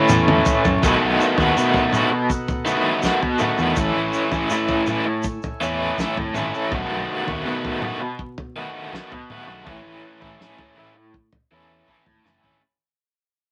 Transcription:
Already playing: overdriven electric guitar A2 E3 A3 C#4 E4, harmonium A3 E4 C#5 G#5
0.09 fingered electric bass E2, mid tom, shaker
0.28 mid tom
0.45 floor tom, shaker
0.65 fingered electric bass F#2, floor tom, shaker
0.83 fingered electric bass B1, overdriven electric guitar B2 D#3 A3 B3 F#4, harmonium D#4 A4 B4 F#5, kick, floor tom, shaker
1.03 fingered electric bass B1
1.21 shaker
1.38 fingered electric bass D#2, overdriven electric guitar B3 F#4, floor tom, shaker
1.42 overdriven electric guitar A3
1.56 overdriven electric guitar B2 D#3 A3 B3 F#4, fingered electric bass B2, shaker
1.74 floor tom, shaker
1.93 overdriven electric guitar D#3 A3 B3 F#4, mid tom, shaker
2.11 muted overdriven electric guitar stroke
2.30 kick, shaker
2.48 floor tom, shaker
2.65 overdriven electric guitar D#3 A3 B3 F#4, shaker
3.03 overdriven electric guitar B2 D#3 A3 B3 F#4, kick, snare, shaker
3.22 muted overdriven electric guitar stroke, floor tom
3.39 overdriven electric guitar D#3 A3 B3 F#4, mid tom, shaker
3.58 fingered electric bass E2, overdriven electric guitar A3 B3 F#4, shaker
3.76 fingered electric bass A1, overdriven electric guitar A2 E3 A3 C#4 E4, harmonium E4 C#5 G#5, kick, floor tom, shaker
3.95 fingered electric bass A1
4.13 shaker
4.31 fingered electric bass A1, overdriven electric guitar A3 C#4 E4, floor tom, shaker
4.50 fingered electric bass A2, overdriven electric guitar A2 E3 A3 C#4 E4, shaker
4.68 floor tom, shaker
4.87 overdriven electric guitar E3 A3 C#4 E4, mid tom, shaker
5.06 muted overdriven electric guitar stroke
5.23 kick, shaker
5.42 floor tom, shaker
5.60 fingered electric bass E2, overdriven electric guitar E3 A3 C#4 E4, shaker
5.97 overdriven electric guitar A2 E3 A3 C#4 E4, kick, snare, shaker
6.16 fingered electric bass G#1, muted overdriven electric guitar stroke, floor tom
6.34 fingered electric bass G#1, overdriven electric guitar E3 A3 C#4 E4, mid tom, shaker
6.53 overdriven electric guitar A3 C#4 E4, shaker
6.71 fingered electric bass B1, overdriven electric guitar B2 D#3 A3 B3 F#4, kick, floor tom
6.90 fingered electric bass B1
7.27 fingered electric bass D#2, overdriven electric guitar A3 B3 F#4, floor tom
7.45 fingered electric bass B2, overdriven electric guitar B2 D#3 A3 B3 F#4
7.65 floor tom
7.82 overdriven electric guitar D#3 A3 B3 F#4, mid tom
8.01 muted overdriven electric guitar stroke
8.19 kick
8.38 floor tom
8.56 overdriven electric guitar D#3 A3 B3 F#4
8.92 overdriven electric guitar B2 D#3 A3 B3 F#4, kick, snare
9.12 muted overdriven electric guitar stroke, floor tom
9.30 overdriven electric guitar D#3 A3 B3 F#4, mid tom
9.47 fingered electric bass B1, overdriven electric guitar A3 B3 F#4
9.67 fingered electric bass A1, overdriven electric guitar A2 E3 A3 C#4 E4, kick, floor tom
9.85 fingered electric bass A1
10.22 fingered electric bass A1, overdriven electric guitar A3 C#4 E4, floor tom
10.39 overdriven electric guitar A2 E3 A3 C#4 E4, fingered electric bass A2, snare
10.58 floor tom
10.76 overdriven electric guitar E3 A3 C#4 E4
10.95 muted overdriven electric guitar stroke
11.14 kick
11.32 floor tom
11.51 fingered electric bass E2, overdriven electric guitar E3 A3 C#4 E4
11.87 overdriven electric guitar A2 E3 A3 C#4 E4, kick
12.06 fingered electric bass G#1, muted overdriven electric guitar stroke, floor tom
12.24 fingered electric bass F#1, overdriven electric guitar E3 A3 C#4 E4, snare
12.42 fingered electric bass G#1, overdriven electric guitar A3 C#4 E4, floor tom

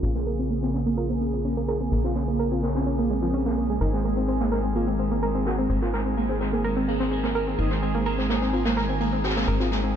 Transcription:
0.03 analog synth bass A#1, analog polysynth C#3 A#3 G#4, synth arpeggio sound C#4, analog synth lead F4, ride
0.15 analog synth lead A#3, synth arpeggio sound A#3, snare
0.27 analog synth lead A#3, synth arpeggio sound A#4, ride
0.39 analog synth lead A#3, synth arpeggio sound C4
0.49 synth arpeggio sound A#3, ride
0.62 analog synth lead A#3, synth arpeggio sound C4, snare
0.74 analog synth lead A#3, synth arpeggio sound C#4, snare, ride
0.86 analog synth lead A#3, synth arpeggio sound A#3
0.97 analog synth lead F4, synth arpeggio sound A#4, ride
1.09 analog synth lead A#3, synth arpeggio sound C4, ride
1.21 analog synth lead A#3, synth arpeggio sound A#3, ride
1.33 synth arpeggio sound C4, ride
1.44 analog synth lead A#3, synth arpeggio sound C#4, ride
1.57 analog synth lead A#3, synth arpeggio sound A#3
1.68 analog synth lead G#4, synth arpeggio sound A#4, snare, ride
1.80 analog synth lead A#3, synth arpeggio sound C4
1.92 analog synth bass A#1, analog synth lead A#3, synth arpeggio sound A#3, ride
2.04 synth arpeggio sound C4, analog synth lead F4, snare
2.15 analog synth lead A#3, synth arpeggio sound C#4, snare, ride
2.28 analog synth lead A#3, synth arpeggio sound A#3, ride
2.39 analog synth lead A#3, synth arpeggio sound A#4, ride
2.51 synth arpeggio sound C4, analog synth lead F4
2.63 analog synth lead A#3, synth arpeggio sound A#3, snare, ride
2.75 synth arpeggio sound C4, analog synth lead C#4, snare, ride
2.86 analog synth lead A#3, synth arpeggio sound C#4, ride
2.99 analog synth lead A#3, synth arpeggio sound A#3
3.10 synth arpeggio sound G#3, analog synth lead C4, open hi-hat
3.22 synth arpeggio sound F3, snare
3.34 synth arpeggio sound C#4, ride
3.46 synth arpeggio sound A#3, snare
3.57 synth arpeggio sound A#3, ride
3.70 synth arpeggio sound G#3
3.81 analog synth bass G#1, analog polysynth D#3 C4 G#4, analog synth lead D#4, synth arpeggio sound A#4, ride
3.93 analog synth lead G#3, synth arpeggio sound C4, snare
4.04 analog synth lead G#3, synth arpeggio sound A#3, ride
4.17 analog synth lead G#3, synth arpeggio sound C4
4.28 synth arpeggio sound C4, ride
4.40 analog synth lead G#3, synth arpeggio sound A#3, snare
4.52 analog synth lead G#3, synth arpeggio sound A#4, snare, ride
4.64 analog synth lead G#3, synth arpeggio sound C4
4.75 synth arpeggio sound A#3, analog synth lead F4, ride
4.87 analog synth lead G#3, synth arpeggio sound C4, ride
4.99 analog synth lead G#3, synth arpeggio sound C4, ride
5.11 synth arpeggio sound A#3, ride
5.22 analog synth lead G#3, synth arpeggio sound A#4, ride
5.35 analog synth lead G#3, synth arpeggio sound C4
5.46 synth arpeggio sound A#3, analog synth lead F#4, snare, ride
5.58 analog synth lead G#3, synth arpeggio sound C4
5.70 analog synth bass G#1, analog synth lead G#3, synth arpeggio sound C4, ride
5.82 synth arpeggio sound A#3, analog synth lead F4, snare
5.93 analog synth lead G#3, synth arpeggio sound A#4, snare, ride
6.05 analog synth lead G#3, synth arpeggio sound C4, ride
6.17 analog synth lead G#3, synth arpeggio sound A#3, ride
6.29 synth arpeggio sound C4, analog synth lead G#4
6.40 analog synth lead G#3, synth arpeggio sound C4, snare, ride
6.53 synth arpeggio sound A#3, analog synth lead G#4
6.64 analog synth lead G#3, synth arpeggio sound A#4, ride
6.77 analog synth lead G#3, synth arpeggio sound C4
6.88 synth arpeggio sound A#3, analog synth lead G#4, open hi-hat
7.00 synth arpeggio sound C4, snare
7.11 synth arpeggio sound C4, ride
7.24 synth arpeggio sound A#3, snare
7.35 synth arpeggio sound A#4, ride
7.47 synth arpeggio sound C4
7.58 analog synth bass G#1, analog polysynth D#3 C4 G#4, synth arpeggio sound A#3, analog synth lead D#4, ride
7.70 analog synth lead G#3, synth arpeggio sound C4, snare
7.82 analog synth lead G#3, synth arpeggio sound C4, ride
7.95 analog synth lead G#3, synth arpeggio sound A#3
8.05 synth arpeggio sound A#4, ride
8.18 analog synth lead G#3, synth arpeggio sound C4, snare
8.29 analog synth lead G#3, synth arpeggio sound A#3, snare, ride
8.42 analog synth lead G#3, synth arpeggio sound C4, snare
8.53 synth arpeggio sound C4, analog synth lead F4, ride
8.65 analog synth lead G#3, synth arpeggio sound A#3, snare, ride
8.77 analog synth lead G#3, synth arpeggio sound A#4, snare
8.88 synth arpeggio sound C4, ride
9.00 analog synth lead G#3, synth arpeggio sound A#3, ride
9.13 analog synth lead G#3, synth arpeggio sound C4
9.24 synth arpeggio sound C4, analog synth lead F#4, snare, ride
9.30 snare, ride
9.36 analog synth lead G#3, synth arpeggio sound A#3, snare, ride
9.42 snare, ride
9.48 analog synth bass G#1, analog synth lead G#3, synth arpeggio sound A#4, ride
9.60 synth arpeggio sound C4, analog synth lead F4, snare
9.71 analog synth lead G#3, synth arpeggio sound A#3, snare, ride
9.84 analog synth lead G#3, synth arpeggio sound C4, ride

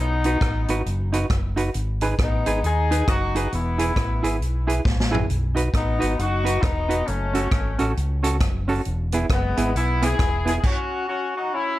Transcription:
Already playing: fingered electric bass B1
0.00 horn section B3 D#4
0.24 clean electric guitar D#4 F#4 B4, closed hi-hat
0.41 fingered electric bass A1, kick, cross-stick, closed hi-hat
0.68 fingered electric bass G#1, clean electric guitar D#4 F#4 B4, closed hi-hat
0.86 fingered electric bass F#1, closed hi-hat
1.13 clean electric guitar D#4 F#4 B4, closed hi-hat
1.30 fingered electric bass F#1, muted clean electric guitar stroke, kick, cross-stick, closed hi-hat
1.56 clean electric guitar D#4 F#4 B4, closed hi-hat
1.74 fingered electric bass G#1, closed hi-hat
2.01 clean electric guitar D#4 G#4 B4, closed hi-hat
2.19 fingered electric bass A1, horn section B3 D#4, kick, cross-stick, closed hi-hat
2.46 fingered electric bass G#1, clean electric guitar D#4 G#4 B4, closed hi-hat
2.63 fingered electric bass D#2, horn section D#4 G#4, closed hi-hat
2.91 clean electric guitar D#4 G#4 B4, closed hi-hat
3.08 fingered electric bass F#1, horn section D#4 F#4, muted clean electric guitar stroke, kick, cross-stick, closed hi-hat
3.35 clean electric guitar D#4 G#4 B4, closed hi-hat
3.52 fingered electric bass E1, horn section B3 E4, closed hi-hat
3.78 clean electric guitar E4 G#4 B4, closed hi-hat
3.96 fingered electric bass A1, kick, cross-stick, closed hi-hat
4.23 fingered electric bass G#1, clean electric guitar E4 G#4 B4, closed hi-hat
4.41 fingered electric bass B1, closed hi-hat
4.67 clean electric guitar E4 G#4 B4, closed hi-hat
4.85 fingered electric bass A1, muted clean electric guitar stroke, kick, snare
5.00 snare
5.11 clean electric guitar E4 G#4 B4, floor tom
5.30 fingered electric bass B1, closed hi-hat
5.55 clean electric guitar D#4 F#4 B4, closed hi-hat
5.74 fingered electric bass A1, horn section B3 D#4, kick, cross-stick, closed hi-hat
5.99 fingered electric bass G#1, clean electric guitar D#4 F#4 B4, closed hi-hat
6.19 fingered electric bass F#1, horn section D#4 F#4, closed hi-hat
6.44 clean electric guitar D#4 F#4 B4, closed hi-hat
6.62 fingered electric bass E1, horn section B3 D#4, muted clean electric guitar stroke, kick, cross-stick, closed hi-hat
6.89 clean electric guitar D#4 F#4 B4, closed hi-hat
7.06 fingered electric bass F#1, horn section A3 C#4, closed hi-hat
7.34 clean electric guitar C#4 F#4 A4, closed hi-hat
7.51 fingered electric bass G#1, kick, cross-stick, closed hi-hat
7.79 fingered electric bass A1, clean electric guitar C#4 F#4 A4, closed hi-hat
7.97 fingered electric bass C#2, closed hi-hat
8.23 clean electric guitar C#4 F#4 A4, closed hi-hat
8.40 fingered electric bass F#1, muted clean electric guitar stroke, kick, cross-stick, closed hi-hat
8.68 clean electric guitar C#4 F#4 A4, open hi-hat
8.85 fingered electric bass E1, closed hi-hat
9.12 clean electric guitar B3 E4 G#4, closed hi-hat
9.30 fingered electric bass F#1, horn section G#3 B3, kick, cross-stick, closed hi-hat
9.57 fingered electric bass G#1, clean electric guitar B3 E4 G#4, closed hi-hat
9.75 fingered electric bass B1, horn section B3 E4, closed hi-hat
10.02 clean electric guitar B3 E4 G#4, horn section E4 G#4, closed hi-hat
10.19 fingered electric bass E1, muted clean electric guitar stroke, kick, cross-stick, closed hi-hat
10.45 clean electric guitar B3 E4 G#4, horn section E4 G#4, closed hi-hat
10.60 horn section G#4, kick
10.64 horn section C#4 F#4, crash
11.08 horn section C#4 F#4
11.36 horn section D#4 F#4
11.54 horn section C#4 E4

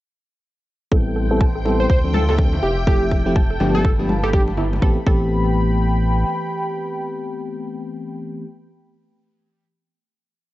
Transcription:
0.92 analog synth bass A1, fm electric piano G3 B3 C4 E4 A4, synth arpeggio sound A4, string machine G5, analog synth pad G5 B5 C6, kick
1.16 synth arpeggio sound A4
1.31 fm electric piano G3 B3 C4 E4 A4
1.41 synth arpeggio sound A5, kick
1.55 synth arpeggio sound A4
1.65 fm electric piano G3 B3 C4 E4 A4, synth arpeggio sound A5, muted conga
1.80 digital synth lead C5
1.89 analog synth bass D2, digital synth lead C5, analog synth pad E5 F5, kick
2.04 fm electric piano F3 A3 C4 D4 A4, muted conga
2.13 digital synth lead A4, synth arpeggio sound A5, high conga
2.28 digital synth lead A4, synth arpeggio sound A4, muted conga, low conga
2.38 fm electric piano F3 A3 C4 D4 A4, synth arpeggio sound A4, kick
2.53 low conga
2.63 analog synth bass F1, synth arpeggio sound E4, digital synth lead G4, analog synth pad G5 A5
2.87 fm electric piano F3 A3 C4 E4 G4, digital synth lead G4, synth arpeggio sound A4, kick
3.11 synth arpeggio sound A4, kick
3.26 fm electric piano F3 A3 C4 E4 G4
3.36 synth arpeggio sound A5, kick
3.50 synth arpeggio sound A4
3.60 analog synth bass G1, fm electric piano F3 A3 B3 D4 G4, analog synth pad F5 B5, synth arpeggio sound A5, muted conga, low conga
3.75 digital synth lead A4, high conga
3.85 kick
3.99 fm electric piano F3 A3 B3 D4 G4
4.09 synth arpeggio sound A5, high conga
4.23 digital synth lead G4, synth arpeggio sound A4, low conga
4.33 fm electric piano F3 A3 B3 D4 G4, digital synth lead G4, synth arpeggio sound A4, kick
4.48 muted conga
4.57 synth arpeggio sound E4, low conga
4.73 muted conga
4.82 analog synth bass A1, fm electric piano E3 A3 B3 C4 G4, synth arpeggio sound A4, analog synth pad G5 B5, kick
5.06 analog synth bass A1, fm electric piano E3 A3 B3 C4 G4, synth arpeggio sound A4, kick

